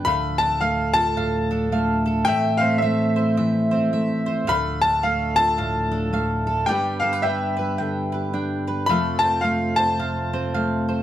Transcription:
Already playing: mandolin B4
0.05 tonewheel organ D2 A2 F3, steel-string acoustic guitar D3, mandolin A3 F5, upright piano B5
0.38 steel-string acoustic guitar D4, mandolin A4, upright piano A5
0.61 steel-string acoustic guitar A3 A4, upright piano F5, mandolin F5
0.94 steel-string acoustic guitar F4, mandolin A4, upright piano A5
1.16 steel-string acoustic guitar A2, mandolin F5
1.51 steel-string acoustic guitar D4, mandolin A4
1.72 steel-string acoustic guitar A3, mandolin F5
2.06 mandolin A4, steel-string acoustic guitar A4
2.25 steel-string acoustic guitar A2, tonewheel organ E3 C4, mandolin A3 E5, upright piano G5
2.57 mandolin C5, upright piano F5
2.62 steel-string acoustic guitar C4
2.78 upright piano E5, mandolin E5
2.84 steel-string acoustic guitar A3 C5
3.16 steel-string acoustic guitar E4, mandolin C5
3.37 steel-string acoustic guitar E3, mandolin E5
3.71 steel-string acoustic guitar C4, mandolin C5
3.93 steel-string acoustic guitar A3, mandolin E5
4.26 mandolin C5, steel-string acoustic guitar C5
4.47 tonewheel organ D2 A2 F3, steel-string acoustic guitar D3, mandolin A3 F5, upright piano B5
4.81 steel-string acoustic guitar D4, mandolin A4, upright piano A5
5.03 steel-string acoustic guitar A3 A4, mandolin F5, upright piano F5
5.36 steel-string acoustic guitar F4, mandolin A4, upright piano A5
5.58 steel-string acoustic guitar A2, mandolin F5
5.91 steel-string acoustic guitar D4, mandolin A4
6.13 steel-string acoustic guitar A3, mandolin F5
6.47 mandolin A4, steel-string acoustic guitar A4
6.66 tonewheel organ G2 D3 B3, mandolin G3 G5, steel-string acoustic guitar G3 D4, upright piano G5
6.70 steel-string acoustic guitar G4 B4
7.00 steel-string acoustic guitar G4, mandolin A4, upright piano F5
7.13 mandolin B4
7.22 steel-string acoustic guitar D4 B4, upright piano E5, mandolin G5
7.57 mandolin B4, steel-string acoustic guitar B4
7.78 steel-string acoustic guitar D3, mandolin G5
8.12 steel-string acoustic guitar G4, mandolin B4
8.34 steel-string acoustic guitar D4, mandolin G5
8.67 mandolin B4, steel-string acoustic guitar B4
8.86 tonewheel organ F2 C3 A3, steel-string acoustic guitar F3 A3 C4, mandolin A3 F5, upright piano B5
8.91 steel-string acoustic guitar F4 A4
9.19 upright piano A5
9.23 steel-string acoustic guitar C4, mandolin C5
9.41 steel-string acoustic guitar A3, upright piano F5, mandolin F5
9.45 steel-string acoustic guitar A4
9.76 steel-string acoustic guitar F4, mandolin C5, upright piano A5
9.99 steel-string acoustic guitar C3, mandolin F5
10.33 steel-string acoustic guitar C4, mandolin C5
10.54 steel-string acoustic guitar A3, mandolin F5
10.88 steel-string acoustic guitar A4, mandolin C5

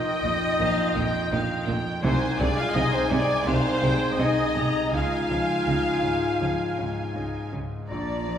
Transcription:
Already playing: grand piano A#1 F3 D#4, french horn section D#4, clarinet F4, viola section D#5, violin section D#5 G5, flute section D#5, oboe G5
0.23 double bass section A#1, grand piano F2, cello section A#2
0.59 double bass section A#1, cello section A#2, grand piano F3, violin section F5
0.95 double bass section A#1, grand piano F2, cello section A#2, violin section G5
1.31 double bass section A#1, cello section A#2, grand piano D#4, violin section F5
1.67 double bass section A#1, grand piano F2, cello section A#2, violin section G5
2.02 double bass section C2, grand piano C2, cello section C3, french horn section C4, clarinet D#4, viola section C5, violin section C5 G#5, flute section C5, oboe G#5
2.38 double bass section C2, cello section C3, grand piano G#3, french horn section D4, viola section D5, violin section D5, flute section D5
2.57 french horn section F4, viola section F5, flute section F5, violin section F5
2.74 double bass section C2, cello section C3, french horn section D#4, clarinet D#4, grand piano D#4, viola section D#5, flute section D#5, violin section D#5, oboe G#5
2.93 french horn section C4, flute section C5, viola section C5, violin section C5
3.10 double bass section C2, cello section C3, grand piano C3, french horn section D5, flute section D5, violin section D5, viola section D5
3.46 double bass section C2, grand piano C2, cello section C3, french horn section C4, clarinet D#4, viola section C5, violin section C5 F5, flute section C5, oboe G#5
3.82 double bass section C2, cello section C3, grand piano G#3, violin section G5
4.18 double bass section C2, cello section C3, french horn section D#4, grand piano D#4, clarinet D#4, flute section D#5, viola section D#5, violin section D#5 G#5, oboe G#5
4.56 double bass section C2, cello section C3, grand piano C3, violin section A#5
4.92 double bass section C#2, grand piano C#2, cello section C#3, clarinet D#4, french horn section F4, flute section F5, violin section F5 G#5, viola section F5, oboe G#5
5.30 double bass section C#2, cello section C#3, grand piano F3
5.67 double bass section C#2, cello section C#3, grand piano D#4
6.03 double bass section C#2, grand piano G#2, cello section C#3
6.40 double bass section C#2, cello section C#3, grand piano F3
6.78 double bass section C#2, grand piano G#2, cello section C#3
7.15 double bass section C#2, cello section C#3, grand piano D#4
7.52 double bass section C#2, grand piano G#2, cello section C#3
7.88 double bass section A#1, grand piano A#1, cello section A#2, french horn section D4, clarinet F4, viola section D5, violin section D5, flute section D5, oboe A#5
8.28 grand piano F3

